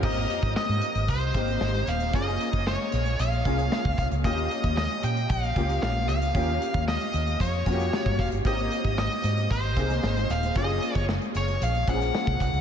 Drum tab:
CC |x---------------|----------------|----------------|----------------|
HH |-xxx-xxxx-xx-xxx|xxxx--xxxxxx--xx|xxxx-xxxxxxx--xx|xxxx-xxxxxxx--ox|
SD |----o-----o-o---|----o-o---o-o-o-|----o-----o-o-o-|----o-----ooo---|
BD |o--o----o-o-----|o--o------o--oo-|o--o----o-o-----|o--o----o-o--oo-|

CC |----------------|----------------|
HH |xxxx-xxxxxxx-xxx|x-xx-xxxxxxx--xx|
SD |----o-o---ooo-o-|----o------oo-o-|
BD |o--o----o-o-----|o--o------o--oo-|